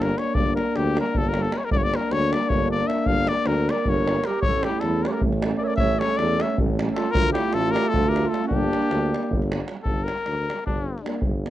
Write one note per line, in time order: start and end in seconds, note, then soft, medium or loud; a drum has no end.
0.00 0.12 G1 loud
0.00 1.67 A#3 medium
0.00 1.66 D4 medium
0.00 0.20 A#4 medium
0.00 davul high medium
0.09 davul high soft
0.18 0.36 C#5 medium
0.18 davul high medium
0.27 davul high soft
0.34 0.58 G1 medium
0.34 0.55 D5 loud
0.34 davul low loud
0.55 0.78 A#4 medium
0.55 davul high medium
0.76 0.98 D2 loud
0.76 0.98 G4 medium
0.76 davul high medium
0.97 1.19 A#4 medium
0.97 davul high medium
1.06 davul high soft
1.15 1.47 G1 loud
1.15 1.30 A4 medium
1.15 davul low medium
1.25 1.43 A#4 medium
1.25 davul high soft
1.34 davul high medium
1.42 1.55 A4 medium
1.42 davul high soft
1.52 1.59 A#4 medium
1.52 davul high medium
1.57 1.66 C#5 medium
1.63 1.71 A#4 medium
1.63 davul high soft
1.71 1.93 G1 loud
1.71 4.24 A#3 medium
1.71 4.24 D4 medium
1.71 1.79 D5 loud
1.71 davul low loud
1.77 1.85 C#5 medium
1.84 1.97 D5 loud
1.94 2.13 A#4 medium
1.94 davul high medium
2.03 davul high soft
2.11 2.33 D2 loud
2.11 2.34 C#5 loud
2.11 davul high medium
2.33 2.50 D5 medium
2.33 davul high medium
2.43 davul high soft
2.49 2.82 G1 loud
2.49 2.70 C#5 loud
2.49 davul low medium
2.60 davul high soft
2.71 2.89 D5 medium
2.80 davul high soft
2.87 3.08 E5 medium
2.87 davul high medium
2.99 davul high soft
3.06 3.29 G1 loud
3.06 3.30 F5 loud
3.06 davul low medium
3.18 davul high soft
3.27 3.48 D5 loud
3.27 davul high medium
3.37 davul high soft
3.46 3.68 D2 loud
3.46 3.71 A#4 loud
3.46 davul high medium
3.58 davul high soft
3.69 3.87 A#4 medium
3.69 3.91 D5 medium
3.69 davul high medium
3.78 davul high soft
3.85 4.17 G1 loud
3.85 4.28 A#4 loud
3.85 4.27 C#5 loud
3.85 davul low medium
3.95 davul high soft
4.07 davul high medium
4.24 4.43 G4 medium
4.24 4.41 A#4 medium
4.24 davul high medium
4.34 davul high soft
4.41 4.65 A1 medium
4.41 7.09 A3 medium
4.41 7.10 C#4 medium
4.41 4.66 C#5 loud
4.41 davul low loud
4.47 4.70 A4 medium
4.63 4.81 G4 medium
4.63 davul high medium
4.68 4.84 E4 medium
4.68 davul high soft
4.80 5.05 E2 loud
4.80 5.10 E4 medium
4.80 5.04 A4 medium
4.80 davul high medium
5.03 5.09 A#4 medium
5.03 davul high medium
5.07 5.12 G4 medium
5.07 5.18 A4 medium
5.07 5.13 C#5 medium
5.11 5.21 A#4 medium
5.11 davul high soft
5.16 5.23 G4 medium
5.21 5.53 A1 medium
5.21 davul low loud
5.32 davul high soft
5.42 davul high medium
5.51 davul high soft
5.58 5.66 A#4 medium
5.58 5.65 D5 medium
5.64 5.71 C#5 medium
5.64 5.76 D5 medium
5.64 5.69 E5 medium
5.69 5.78 A#4 medium
5.69 davul high soft
5.76 6.00 A1 loud
5.76 5.98 C#5 loud
5.76 6.01 E5 loud
5.76 davul low loud
5.97 6.17 A4 medium
5.97 6.19 C#5 loud
6.01 davul high medium
6.10 davul high soft
6.17 6.40 E2 loud
6.17 6.41 A4 medium
6.17 6.43 D5 loud
6.17 davul high medium
6.39 6.57 C#5 medium
6.39 6.58 E5 medium
6.39 davul high medium
6.50 davul high soft
6.58 6.89 A1 loud
6.58 davul low loud
6.79 davul high medium
6.89 davul high soft
6.94 7.13 F4 medium
6.94 7.12 A4 loud
6.94 davul high medium
7.06 davul high soft
7.11 7.35 D2 loud
7.11 8.49 A3 medium
7.11 8.50 F4 medium
7.11 7.32 F4 loud
7.11 7.32 A#4 loud
7.11 davul low loud
7.33 7.53 E4 medium
7.33 7.55 G4 loud
7.33 davul high medium
7.44 davul high soft
7.51 7.76 A1 loud
7.51 7.74 F4 medium
7.51 7.73 A4 loud
7.51 davul high medium
7.71 7.91 G4 medium
7.71 7.90 A#4 loud
7.76 davul high medium
7.86 8.10 A4 loud
7.86 davul high soft
7.90 8.10 F4 medium
7.94 8.25 D2 loud
7.94 davul low medium
8.05 8.28 G4 medium
8.05 8.31 A#4 loud
8.05 davul high soft
8.16 davul high medium
8.25 8.43 F4 medium
8.25 davul high soft
8.29 8.47 A4 medium
8.34 davul high medium
8.44 9.43 D4 medium
8.44 davul high soft
8.48 8.72 G1 loud
8.48 9.71 A#3 medium
8.48 9.71 D4 medium
8.48 9.45 G4 loud
8.48 davul low medium
8.73 davul high medium
8.82 davul high soft
8.91 9.12 D2 medium
8.91 davul high medium
9.14 davul high medium
9.23 davul high soft
9.30 9.61 G1 loud
9.30 davul low medium
9.42 davul high soft
9.52 davul high medium
9.60 davul high soft
9.68 davul high medium
9.77 davul high soft
9.83 10.09 G1 medium
9.83 10.05 A4 medium
9.83 davul low medium
10.04 10.65 A#4 loud
10.08 davul high medium
10.18 davul high soft
10.26 10.49 D2 medium
10.26 davul high soft
10.50 davul high medium
10.59 davul high soft
10.66 10.98 G1 medium
10.66 11.02 D4 medium
10.66 davul low medium
10.98 davul high soft
11.02 11.19 D4 medium
11.02 davul high medium
11.06 11.22 A#3 medium
11.14 davul high soft
11.22 11.45 G1 medium
11.22 davul low medium
11.44 11.50 A#3 medium
11.44 11.50 D4 medium
11.44 davul high medium